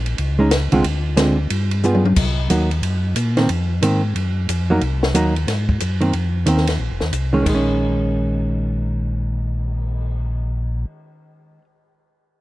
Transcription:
Already playing: tonewheel organ A#1
0.06 ride
0.18 tonewheel organ C#2, ride
0.39 hollow-body jazz guitar G#3 C#4 D#4
0.51 snare, hi-hat pedal, ride
0.72 tonewheel organ C2, hollow-body jazz guitar D3 G#3 C4 F4, ride
0.84 tonewheel organ D2, ride
1.17 hollow-body jazz guitar D3 G#3 C4 F4, snare, hi-hat pedal, ride
1.50 tonewheel organ G2, ride
1.71 ride
1.83 hollow-body jazz guitar G3 B3 F4 G#4, hi-hat pedal
1.95 high tom
2.05 high tom
2.16 tonewheel organ C2, kick, crash
2.50 tonewheel organ D#2, hollow-body jazz guitar F#3 A#3 D#4, hi-hat pedal, ride
2.71 ride
2.82 tonewheel organ F#2, ride
3.16 tonewheel organ A#2, hi-hat pedal, ride
3.37 hollow-body jazz guitar D#3 A#3 C4, snare, ride
3.49 tonewheel organ F2, ride
3.82 tonewheel organ G#2, hollow-body jazz guitar D#3 A#3 C4, hi-hat pedal, ride
4.15 tonewheel organ F#2, ride
4.49 tonewheel organ F2, hi-hat pedal, ride
4.70 hollow-body jazz guitar F#3 A#3 D#4
4.81 tonewheel organ C2, ride
5.03 snare
5.14 tonewheel organ D#2, hollow-body jazz guitar F#3 A#3 D#4, hi-hat pedal, ride
5.36 ride
5.47 tonewheel organ G#2, snare, ride
5.69 kick
5.80 tonewheel organ F#2, hi-hat pedal, ride
6.01 hollow-body jazz guitar D#3 A#3 C4, ride
6.13 tonewheel organ F2, ride
6.46 tonewheel organ D#2, hollow-body jazz guitar D#3 A#3 C4, hi-hat pedal, ride
6.58 snare
6.67 snare, ride
6.80 tonewheel organ A#1
6.91 tonewheel organ F1
7.00 tonewheel organ D#2, snare
7.12 tonewheel organ C2, hi-hat pedal, ride
7.33 hollow-body jazz guitar D#3 G#3 C#4
7.43 tonewheel organ A#1, hollow-body jazz guitar D#3, kick, crash
7.49 hollow-body jazz guitar G#3
7.55 hollow-body jazz guitar C#4
7.67 cymbal swell

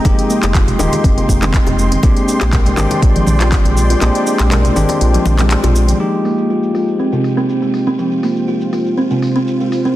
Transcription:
Already playing: analog synth pad G#3 D#5 G5
0.05 analog synth bass F1, kalimba F3, tine electric piano G#3 A#3 D#4 G4, analog synth pad C6, kick, closed hi-hat, low bongo, cabasa
0.19 closed hi-hat, cabasa
0.30 kalimba A#3, cabasa
0.43 analog synth bass F1, clap, closed hi-hat, high bongo, cabasa
0.55 kalimba F4, kick, clap, closed hi-hat, low conga, cabasa
0.67 closed hi-hat, low conga, cabasa
0.79 analog synth bass D#1, tine electric piano G#3 A#3 D#4 G4, kalimba F4, mid tom, low bongo, high conga, cabasa
0.92 closed hi-hat, high bongo, high conga, cabasa
1.04 analog synth bass F1, kalimba C4, kick, closed hi-hat, cabasa
1.17 kalimba C3, closed hi-hat, cabasa
1.29 analog synth bass F1, kick, mid tom, low bongo, high conga, cabasa
1.42 kalimba C4, clap, closed hi-hat, low bongo, high conga, cabasa
1.54 kick, clap, closed hi-hat, cabasa
1.66 analog synth bass F1, kalimba G#3, closed hi-hat, high bongo, low conga, cabasa
1.79 cabasa
1.92 kalimba C4, closed hi-hat, high conga, cabasa
2.03 analog synth bass A#1, tine electric piano G#3 C4 D4 G4, analog synth pad G#3 D5 G5, kalimba A#3, kick, closed hi-hat, low bongo, cabasa
2.17 closed hi-hat, cabasa
2.28 kalimba D4, cabasa
2.41 analog synth bass A#1, clap, closed hi-hat, high bongo, cabasa
2.53 kalimba A#4, kick, clap, closed hi-hat, low conga, cabasa
2.65 closed hi-hat, low conga, cabasa
2.77 analog synth bass G#1, tine electric piano G#3 C4 D4 G4, kalimba A#4, clap, low bongo, high conga, cabasa
2.91 closed hi-hat, high bongo, high conga, cabasa
3.02 analog synth bass A#1, kalimba F4, kick, closed hi-hat, cabasa
3.16 kalimba F3, closed hi-hat, mid tom, cabasa
3.27 analog synth bass A#1, mid tom, high conga, cabasa
3.41 kalimba F4, clap, closed hi-hat, cabasa
3.52 kick, clap, closed hi-hat, cabasa
3.64 analog synth bass A#1, kalimba D4, closed hi-hat, high conga, cabasa
3.76 high conga, cabasa
3.90 kalimba F4, closed hi-hat, cabasa
4.01 analog synth bass A#1, tine electric piano G#3 C4 D4 G4, kalimba A#3, clap, closed hi-hat, low bongo, cabasa
4.15 closed hi-hat, cabasa
4.26 kalimba D4, cabasa
4.39 analog synth bass A#1, clap, closed hi-hat, high bongo, cabasa
4.51 kalimba A#4, clap, closed hi-hat, low conga, cabasa
4.64 closed hi-hat, low conga, cabasa
4.76 analog synth bass G#1, tine electric piano G#3 C4 D4 G4, kalimba A#4, mid tom, low bongo, high conga, cabasa
4.89 closed hi-hat, high bongo, high conga, cabasa
5.01 analog synth bass A#1, kalimba F4, closed hi-hat, cabasa
5.14 kalimba F3, closed hi-hat, cabasa
5.25 analog synth bass A#1, kalimba D4, mid tom, high bongo, low bongo, high conga, cabasa
5.38 kalimba G#3, clap, closed hi-hat, low bongo, high conga, cabasa
5.51 clap, closed hi-hat, cabasa
5.64 analog synth bass A#1, kalimba F4, closed hi-hat, high bongo, low conga, cabasa
5.76 cabasa
5.88 kalimba F3, closed hi-hat, high conga, cabasa
6.00 kalimba F3, tine electric piano G#3 A#3 D#4 F4 G4, analog synth pad F4 C5 G5, cabasa
6.13 cabasa
6.25 kalimba A#3, open hi-hat, cabasa
6.38 cabasa
6.50 kalimba F4, cabasa
6.63 cabasa
6.74 kalimba F4, open hi-hat, cabasa
6.88 cabasa
6.99 kalimba C4, cabasa
7.12 kalimba C3, cabasa
7.24 open hi-hat, cabasa
7.37 kalimba C4, cabasa
7.49 cabasa
7.62 kalimba G#3, cabasa
7.74 open hi-hat, cabasa
7.87 kalimba C4, cabasa
7.99 kalimba F3, cabasa
8.12 cabasa
8.23 kalimba A#3, open hi-hat, cabasa
8.36 cabasa
8.48 kalimba F4, cabasa
8.61 cabasa
8.73 kalimba F4, open hi-hat, cabasa
8.86 cabasa
8.98 kalimba C4, cabasa
9.11 kalimba C3, cabasa
9.22 open hi-hat, cabasa
9.36 kalimba C4, cabasa
9.47 cabasa
9.60 kalimba G#3, cabasa
9.72 open hi-hat, cabasa
9.85 kalimba C4, cabasa

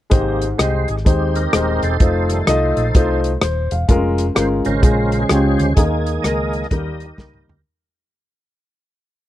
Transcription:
0.10 fingered electric bass G#1, upright piano G#2 G#3 D#4 G4 C5, tonewheel organ C3 A#3 G4, kick, closed hi-hat
0.42 closed hi-hat
0.58 fingered electric bass C2, upright piano G#3 D#4 G4 D#5, tonewheel organ C5, cross-stick, closed hi-hat
0.88 fingered electric bass G#1, tonewheel organ G#4, closed hi-hat
0.97 cross-stick
1.05 fingered electric bass D#2, upright piano G#3 D#4 G4 C5, tonewheel organ C4 D#4 G4, kick, closed hi-hat
1.35 tonewheel organ D#4 G4 A#4, closed hi-hat
1.53 fingered electric bass D#1, upright piano G#3 D#4 G4 C5, cross-stick, closed hi-hat
1.83 fingered electric bass E1, tonewheel organ D#4 A4 C5, closed hi-hat
2.00 fingered electric bass F1, upright piano A3 D#4 F4 C5, kick, closed hi-hat
2.30 tonewheel organ D#3 G3 A3, cross-stick, closed hi-hat
2.47 fingered electric bass C2, upright piano A3 D#4 F4 D#5, cross-stick, closed hi-hat
2.77 fingered electric bass A#1, closed hi-hat
2.95 fingered electric bass C2, upright piano A3 D#4 F4 C5, kick, closed hi-hat
3.24 closed hi-hat
3.41 fingered electric bass D#1, upright piano C5, cross-stick, closed hi-hat
3.71 fingered electric bass E1, upright piano F5, closed hi-hat
3.88 fingered electric bass F1, upright piano G#3 C#4 F4 A#4, kick, closed hi-hat
4.18 cross-stick, closed hi-hat
4.35 fingered electric bass G1, upright piano G#3 C#4 F4 A#4, tonewheel organ C5, cross-stick, closed hi-hat
4.65 fingered electric bass G#1, tonewheel organ C#3 G#3 C#4 A#4 C5, closed hi-hat
4.82 fingered electric bass A#1, upright piano G#3 C#4 F4 G#4, kick, closed hi-hat
5.12 closed hi-hat
5.21 tonewheel organ C#4 G#4
5.29 fingered electric bass C#2, upright piano G#3 C#4 F4 G4, cross-stick, closed hi-hat
5.58 fingered electric bass D2, tonewheel organ G4, closed hi-hat
5.74 fingered electric bass D#2, tonewheel organ D#3 G#3 A#3 D#4 G#4, upright piano D#3 G#3 A#3 D#4, kick, closed hi-hat
5.79 upright piano A#4
6.07 closed hi-hat
6.22 fingered electric bass C#2, upright piano G#3 A#3 D#4 A#4, tonewheel organ G#4 A#4 D#5, cross-stick, closed hi-hat
6.53 closed hi-hat
6.63 cross-stick
6.70 fingered electric bass D#2, tonewheel organ D#3 G3 A#3 G4 A#4 D#5, upright piano D#3 G3 A#3 D#4 A#4, kick, closed hi-hat
7.00 closed hi-hat
7.17 fingered electric bass C#2, upright piano G3 A#3 D#4 A#4, kick, snare
7.34 mid tom
7.48 fingered electric bass D2, floor tom

